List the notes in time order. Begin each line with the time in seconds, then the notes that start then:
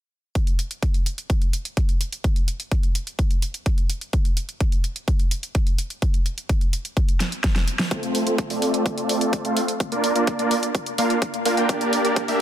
0.35 kick, closed hi-hat
0.47 closed hi-hat
0.59 closed hi-hat
0.71 closed hi-hat
0.83 kick, closed hi-hat
0.94 closed hi-hat
1.06 closed hi-hat
1.18 closed hi-hat
1.30 kick, closed hi-hat
1.42 closed hi-hat
1.53 closed hi-hat
1.65 closed hi-hat
1.77 kick, closed hi-hat
1.89 closed hi-hat
2.01 closed hi-hat
2.12 closed hi-hat
2.24 kick, closed hi-hat
2.36 closed hi-hat
2.48 closed hi-hat
2.60 closed hi-hat
2.72 kick, closed hi-hat
2.83 closed hi-hat
2.95 closed hi-hat
3.07 closed hi-hat
3.19 kick, closed hi-hat
3.31 closed hi-hat
3.42 closed hi-hat
3.54 closed hi-hat
3.66 kick, closed hi-hat
3.78 closed hi-hat
3.90 closed hi-hat
4.01 closed hi-hat
4.13 kick, closed hi-hat
4.25 closed hi-hat
4.37 closed hi-hat
4.49 closed hi-hat
4.60 kick, closed hi-hat
4.72 closed hi-hat
4.84 closed hi-hat
4.96 closed hi-hat
5.08 kick, closed hi-hat
5.19 closed hi-hat
5.31 closed hi-hat
5.43 closed hi-hat
5.55 kick, closed hi-hat
5.67 closed hi-hat
5.78 closed hi-hat
5.90 closed hi-hat
6.02 kick, closed hi-hat
6.14 closed hi-hat
6.26 closed hi-hat
6.38 closed hi-hat
6.49 kick, closed hi-hat
6.61 closed hi-hat
6.73 closed hi-hat
6.85 closed hi-hat
6.97 kick, closed hi-hat
7.09 closed hi-hat
7.20 snare, closed hi-hat
7.32 closed hi-hat
7.44 kick, snare, closed hi-hat
7.56 snare, closed hi-hat
7.68 closed hi-hat
7.79 snare, closed hi-hat
7.91 A3 C4 F4 A4 C5, kick, closed hi-hat
8.03 closed hi-hat
8.15 open hi-hat
8.27 A3 C4 F4 A4 C5, closed hi-hat
8.38 kick, closed hi-hat
8.50 A3 C4 F4 A4 D5, open hi-hat
8.62 open hi-hat
8.74 closed hi-hat
8.86 kick, closed hi-hat
8.98 closed hi-hat
9.09 open hi-hat
9.21 closed hi-hat
9.33 kick, closed hi-hat
9.45 A3 C4 F4 A4 F5, closed hi-hat
9.57 open hi-hat
9.68 closed hi-hat
9.80 kick, closed hi-hat
9.92 A#3 D4 F4 A#4 D5, closed hi-hat
10.04 open hi-hat
10.16 A#3 D4 F4 A#4 D5, closed hi-hat
10.27 kick, closed hi-hat
10.39 A#3 D4 F4 A#4 D5, closed hi-hat
10.51 open hi-hat
10.63 closed hi-hat
10.75 kick, closed hi-hat
10.86 closed hi-hat
10.98 A#3 D4 F4 A#4 F5, open hi-hat
11.10 closed hi-hat
11.22 kick, closed hi-hat
11.34 closed hi-hat
11.45 A#3 D4 F4 A#4 F5, open hi-hat
11.57 A#3 D4 F4 A#4 G5, closed hi-hat
11.69 A#3 D4 G4 A#4 D5, kick, closed hi-hat
11.81 closed hi-hat
11.93 open hi-hat
12.05 A#3 D4 G4 A#4 D5, closed hi-hat
12.16 kick, closed hi-hat
12.28 A#3 D4 G4 A#4 E5, open hi-hat